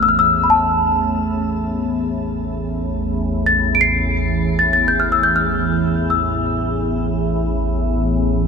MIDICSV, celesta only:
0, 0, Header, 1, 2, 480
1, 0, Start_track
1, 0, Key_signature, 0, "minor"
1, 0, Tempo, 500000
1, 8137, End_track
2, 0, Start_track
2, 0, Title_t, "Celesta"
2, 0, Program_c, 0, 8
2, 25, Note_on_c, 0, 88, 69
2, 82, Note_on_c, 0, 89, 65
2, 107, Note_off_c, 0, 88, 0
2, 174, Note_off_c, 0, 89, 0
2, 182, Note_on_c, 0, 88, 77
2, 418, Note_on_c, 0, 83, 52
2, 480, Note_on_c, 0, 81, 69
2, 484, Note_off_c, 0, 83, 0
2, 488, Note_off_c, 0, 88, 0
2, 1948, Note_off_c, 0, 81, 0
2, 3326, Note_on_c, 0, 93, 72
2, 3598, Note_on_c, 0, 98, 62
2, 3618, Note_off_c, 0, 93, 0
2, 3657, Note_on_c, 0, 96, 83
2, 3670, Note_off_c, 0, 98, 0
2, 4373, Note_off_c, 0, 96, 0
2, 4405, Note_on_c, 0, 93, 72
2, 4532, Note_off_c, 0, 93, 0
2, 4543, Note_on_c, 0, 93, 70
2, 4685, Note_on_c, 0, 91, 71
2, 4695, Note_off_c, 0, 93, 0
2, 4796, Note_on_c, 0, 89, 67
2, 4812, Note_off_c, 0, 91, 0
2, 4916, Note_on_c, 0, 88, 66
2, 4918, Note_off_c, 0, 89, 0
2, 5025, Note_on_c, 0, 91, 67
2, 5038, Note_off_c, 0, 88, 0
2, 5144, Note_on_c, 0, 89, 68
2, 5167, Note_off_c, 0, 91, 0
2, 5858, Note_on_c, 0, 88, 59
2, 5881, Note_off_c, 0, 89, 0
2, 7524, Note_off_c, 0, 88, 0
2, 8137, End_track
0, 0, End_of_file